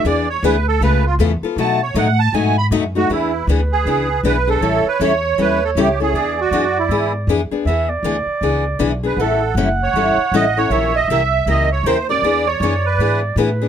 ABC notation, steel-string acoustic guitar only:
X:1
M:4/4
L:1/16
Q:"Swing" 1/4=158
K:E
V:1 name="Steel-string acoustic guitar"
[E,B,=DG]2 z2 [E,B,DG] z3 [C,A,B,^EA]2 z2 [C,A,B,EA] z [B,EA]2 | [B,,F,A,DF]2 z2 [B,,F,A,DF] z3 [B,,F,A,DF]2 z2 [B,,F,A,DF] z [A,DF]2 | [E,B,=DG]2 z2 [E,B,DG] z3 [E,B,DG]2 z2 [E,B,DG] z [B,DG]2 | [E,=G,CEA]2 z2 [E,G,CEA] z3 [E,G,CEA]2 z2 [E,G,CEA] z [CEA]2 |
[E,B,=DG]2 z2 [E,B,DG] z3 [E,B,DG]2 z2 [E,B,DG] z [B,DG]2 | [E,B,=DG]2 z2 [E,B,DG] z3 [E,B,DG]2 z2 [E,B,DG] z [B,DG]2 | [E,=G,CEA]2 z2 [E,G,CEA] z3 [E,G,CEA]2 z2 [E,G,CEA] z [CEA]2 | [E,^A,C=G^A]2 z2 [E,A,CGA] z3 [E,A,CGA]2 z2 [E,A,CGA] z [CGA]2 |
[E,B,=DG]2 z2 [E,B,DG] z3 [E,B,DG]2 z2 [E,B,DG] z [B,DG]2 |]